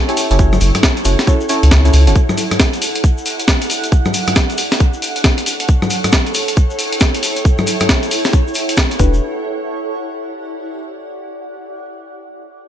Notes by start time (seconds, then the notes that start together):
Already playing: E4 A4 C#5 G5
0.09 C#4 E4 G4 A4 C#5, closed hi-hat, cabasa
0.17 open hi-hat, cabasa
0.31 F#1 C#4 E4 G4 A4 C#5, closed hi-hat, cabasa
0.39 C#4 E4 F#4 A4 C#5, kick, cabasa
0.53 cross-stick, high conga, cabasa
0.61 F#1, open hi-hat, cabasa
0.75 cross-stick, closed hi-hat, high conga, cabasa
0.83 kick, snare, cabasa
0.97 closed hi-hat, cabasa
1.04 F#1 C#4 E4 F#4 A4 C#5 F#5, open hi-hat, cabasa
1.19 snare, closed hi-hat, cabasa
1.27 C#4 E4 F#4 A4 C#5, kick, cabasa
1.41 cabasa
1.49 C#4 E4 F#4 A4 C#5, open hi-hat, cabasa
1.63 C#2, closed hi-hat, cabasa
1.71 kick, snare, cabasa
1.85 C#4 E4 F#4 A4 C#5, closed hi-hat, cabasa
1.93 C#2, open hi-hat, cabasa
2.07 F#1 C#4 E4 F#4 A4 C#5, closed hi-hat, cabasa
2.15 kick, cabasa
2.29 G4, cross-stick, high conga, cabasa
2.38 open hi-hat, cabasa
2.51 cross-stick, closed hi-hat, high conga, cabasa
2.60 kick, snare, cabasa
2.73 closed hi-hat, cabasa
2.82 open hi-hat, cabasa
2.95 closed hi-hat, cabasa
3.04 kick, cabasa
3.18 cabasa
3.26 open hi-hat, cabasa
3.40 closed hi-hat, cabasa
3.48 kick, snare, cabasa
3.62 closed hi-hat, cabasa
3.70 D4, open hi-hat, cabasa
3.84 closed hi-hat, cabasa
3.92 A4, kick, cabasa
4.05 cross-stick, high conga, cabasa
4.14 open hi-hat, cabasa
4.24 C#5, cross-stick, closed hi-hat, high conga, cabasa
4.36 kick, snare, cabasa
4.50 closed hi-hat, cabasa
4.58 open hi-hat, cabasa
4.72 snare, closed hi-hat, cabasa
4.80 kick, cabasa
4.93 cabasa
5.02 open hi-hat, cabasa
5.16 closed hi-hat, cabasa
5.24 kick, snare, cabasa
5.38 closed hi-hat, cabasa
5.46 E4, open hi-hat, cabasa
5.60 closed hi-hat, cabasa
5.68 kick, cabasa
5.82 cross-stick, high conga, cabasa
5.90 G5, open hi-hat, cabasa
6.04 cross-stick, closed hi-hat, high conga, cabasa
6.12 kick, snare, cabasa
6.26 closed hi-hat, cabasa
6.34 open hi-hat, cabasa
6.48 closed hi-hat, cabasa
6.57 kick, cabasa
6.70 cabasa
6.79 open hi-hat, cabasa
6.93 closed hi-hat, cabasa
7.00 kick, snare, cabasa
7.15 closed hi-hat, cabasa
7.23 open hi-hat, cabasa
7.36 closed hi-hat, cabasa
7.45 kick, cabasa
7.58 cross-stick, high conga, cabasa
7.67 open hi-hat, cabasa
7.80 cross-stick, closed hi-hat, high conga, cabasa
7.89 F#5, kick, snare, cabasa
8.03 closed hi-hat, cabasa
8.11 open hi-hat, cabasa
8.25 snare, closed hi-hat, cabasa
8.33 kick, cabasa
8.48 cabasa
8.54 open hi-hat, cabasa
8.69 closed hi-hat, cabasa
8.77 kick, snare, cabasa
8.91 closed hi-hat, cabasa
8.99 E1 D4 E4 F#4 G4 B4, kick, cabasa
9.08 G4
9.14 cabasa
9.37 D5
9.42 F#5